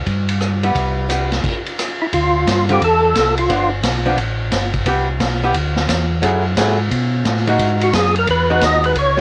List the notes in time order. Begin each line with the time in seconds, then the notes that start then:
0.06 G2, kick, ride
0.29 ride
0.41 cross-stick, hi-hat pedal
0.63 G3 B3 E4, ride
0.75 C2, kick, ride
1.09 G3 B3 E4, hi-hat pedal, ride
1.32 snare, ride
1.44 kick, crash, ride
1.66 ride
1.79 cross-stick, hi-hat pedal, ride
2.01 E4
2.12 D2 F4, kick, ride
2.47 G2, kick, snare, hi-hat pedal, ride
2.69 D3 G3 C4 F4 G4, ride
2.81 E2 A4, kick, ride
3.15 C2, kick, snare, hi-hat pedal, ride
3.38 F4, ride
3.49 G1 F3 B3 D4, kick, ride
3.83 B1, kick, snare, hi-hat pedal, ride
4.06 F3 B3 D4
4.17 A1, kick, ride
4.52 G1, kick, snare, hi-hat pedal, ride
4.74 kick, ride
4.86 C2 B3 E4 G4, kick, ride
5.20 B1, kick, snare, hi-hat pedal, ride
5.44 B3 E4 G4
5.54 D2, kick, ride
5.76 snare
5.89 E2, kick, snare, hi-hat pedal, ride
6.22 F#2 F#3 A3 E4 G#4, kick, ride
6.57 G#2 F#3 A3 E4 G#4, kick, snare, hi-hat pedal, ride
6.91 B2, kick, ride
7.25 A2, kick, snare, hi-hat pedal, ride
7.47 E3 G#3 D#4 F#4, ride
7.59 G#2, kick, ride
7.81 F#4, ride
7.93 F#2 G#4, kick, snare, hi-hat pedal, ride
8.15 A#4, ride
8.27 E2 B4, kick, ride
8.50 G#3 D#4 F#4
8.61 D#2 D#5, kick, snare, hi-hat pedal, ride
8.84 B4, ride
8.95 C#2 C#5, kick, ride
9.17 G3, snare